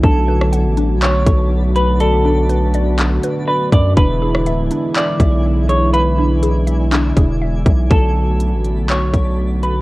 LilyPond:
<<
  \new Staff \with { instrumentName = "Clean electric guitar" } { \time 4/4 \key b \dorian \tempo 4 = 122 a'2 cis''4. b'8 | a'2. b'8 d''8 | b'2 d''4. cis''8 | b'2. r4 |
a'2 cis''4. b'8 | }
  \new Staff \with { instrumentName = "Synth texture" } { \time 4/4 \key b \dorian <d' b' a''>1~ | <d' b' a''>1 | <e' d'' gis''>1~ | <e' d'' gis''>1 |
<d' a' b''>1 | }
  \new Staff \with { instrumentName = "Synth pluck" } { \time 4/4 \key b \dorian d'8 b'8 fis''8 d'4 a'4 b'8 | d''8 d'8 b'8 d''8 d'8 b'8 d''4 | d'8 gis'8 e''8 d'4 e''4 gis'8 | e''8 d'8 gis'8 e''8 d'8 gis'8 e''4 |
r1 | }
  \new Staff \with { instrumentName = "Analog synth pad" } { \time 4/4 \key b \dorian <d fis a b fis'>1~ | <d fis a b fis'>1 | <d e gis b e'>1~ | <d e gis b e'>1 |
<d fis a b fis'>1 | }
  \new Staff \with { instrumentName = "808-style bass" } { \clef bass \time 4/4 \key b \dorian b,,4~ b,,16 a,,8~ a,,32 b,,8~ b,,32 b,,4.~ | b,,2~ b,,8 r4 fis,8 | e,,4 d,,8 r4 b,,4.~ | b,,2~ b,,8 e,,4 b,,8 |
b,,4~ b,,16 a,,8~ a,,32 b,,8~ b,,32 b,,4. | }
  \new DrumStaff \with { instrumentName = "Drums" } \drummode { \time 4/4 <hh bd>8. ss16 hh8 hh8 <hc hh>8 <hh bd>8 r8 hh8 | hh4 hh8 hh8 <hc hh>8 hh8 r8 <hh bd>8 | <hh bd>8. ss16 hh8 hh8 <hc hh>8 <hh bd>8 r8 hh8 | hh4 hh8 hh8 <hc hh>8 <hh bd>8 r8 <hh bd>8 |
<hh bd>4 hh8 hh8 <hc hh>8 <hh bd>8 r8 hh8 | }
>>